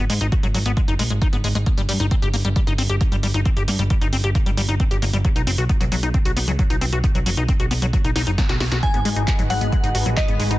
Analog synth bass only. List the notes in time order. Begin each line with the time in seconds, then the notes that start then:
0.10 G#2
0.21 G#1
0.43 G#1
0.55 G#1
0.66 G#1
0.88 F#1
0.99 A#1
1.10 G#1
1.33 G#1
1.44 G#1
1.55 G#1
1.78 G1
1.89 G2
2.00 G1
2.22 G1
2.34 G1
2.45 G1
2.67 G1
2.78 G1
2.90 G1
3.12 G1
3.23 G1
3.34 G1
3.57 G1
3.68 G2
3.79 G1
4.01 G1
4.13 G1
4.24 G1
4.46 G1
4.57 G1
4.69 G1
4.91 G1
5.02 G1
5.13 G1
5.36 B1
5.47 F#1
5.58 B1
5.81 B1
5.92 B1
6.03 B1
6.25 B1
6.37 B1
6.48 C#2
6.70 B1
6.81 B1
6.92 B1
7.15 B1
7.26 F#1
7.37 B1
7.60 B1
7.71 B1
7.82 B1
8.05 B1
8.16 B1
8.27 F#1
8.49 B1
8.60 B1
8.72 B1
8.94 G#1
9.05 G#2
9.16 G#1
9.39 G#1
9.50 G#1
9.61 G#1
9.84 G#1
9.95 G#1
10.06 A#1
10.28 G#1
10.40 G#1
10.51 G#1